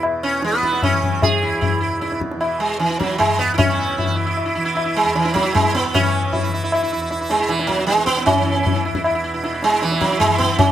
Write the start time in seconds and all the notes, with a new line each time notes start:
Already playing: E2 B2 E3
0.03 tabla na
0.23 C#4
0.42 E3 B3, tabla te
0.53 tabla te
0.63 E4, tabla ke
0.73 tabla te
0.83 C#4, tabla na, tabla ge
0.92 E3
1.03 tabla ge
1.22 G#4, tabla tin, tabla ge
1.41 E2 E4
1.61 E4, tabla tin, tabla ge
1.80 E4
1.87 B2
2.01 E4, tabla te
2.12 tabla te
2.21 tabla ke
2.31 tabla te
2.36 E3
2.40 E4, tabla na
2.60 G#3
2.79 E3, tabla te
2.84 E3
2.90 tabla te
2.99 F#3 E4, tabla ke
3.10 tabla te
3.18 G#3 E4, tabla na, tabla ge
3.34 E2
3.39 B3, tabla te
3.54 C#4 E4
3.58 B2, tabla tin, tabla ge
3.68 E4
3.78 E4
3.97 E4, tabla tin, tabla ge
4.06 E3 E4
4.16 E4
4.26 E4
4.37 tabla na
4.45 E4
4.55 E3 E4
4.65 E4
4.75 E4, tabla na
4.85 E4
4.96 G#3
5.03 E2 E4
5.15 E3, tabla te
5.24 E4, tabla te
5.34 F#3, tabla ke
5.43 E4, tabla te
5.51 B2 G#3
5.55 tabla na, tabla ge
5.63 E4
5.75 B3, tabla te
5.94 C#4, tabla tin, tabla ge
5.99 E3
6.03 E4
6.32 E4, tabla tin, tabla ge
6.43 E4
6.48 E3
6.54 E4
6.64 E4
6.72 E4, tabla na
6.83 E4
6.92 E2 E4
7.02 E4
7.10 E4, tabla te
7.21 E4
7.30 G#3, tabla te
7.39 B2 E4
7.48 E3, tabla te
7.59 E4, tabla te
7.67 F#3, tabla ke
7.79 tabla te
7.87 G#3, tabla te
7.92 E3
7.98 tabla te
8.06 B3, tabla ke
8.17 E4, tabla te
8.26 C#4, tabla tin, tabla ge
8.37 E3 E4
8.47 E4
8.57 E4
8.66 tabla tin, tabla ge
8.75 E4
8.85 E2 E4, tabla na
8.95 E4, tabla ke
9.04 E4, tabla na
9.15 E4
9.24 E4
9.34 B2 E4
9.44 E4, tabla te
9.54 E4
9.63 G#3, tabla te
9.73 E4
9.82 E3, tabla te
9.92 E4, tabla te
10.01 F#3, tabla ke
10.11 E4, tabla te
10.20 G#3, tabla na, tabla ge
10.29 E3 E4
10.38 B3, tabla ge
10.53 E4
10.59 C#4, tabla tin, tabla ge